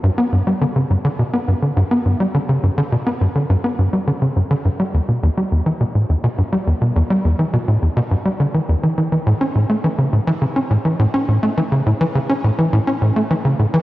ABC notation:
X:1
M:4/4
L:1/16
Q:1/4=104
K:Glyd
V:1 name="Analog synth bass" clef=bass
G,, B, G,, G, D, C, G,, D, B,, B, G,, D, G,, B, G,, G, | D, C, G,, D, B,, B, G,, D, G,, B, G,, G, D, C, G,, D, | G,, G, E,, B,, E,, G, E,, E, B,, A,, E,, B,, G,, G, E,, B,, | E,, G, E,, E, B,, A,, E,, B,, G,, G, D, E, E,, E, E, E, |
A,, C A,, A, E, C, A,, E, C, C A,, E, A,, C A,, A, | E, C, A,, E, C, C A,, E, A,, C A,, A, E, C, A,, E, |]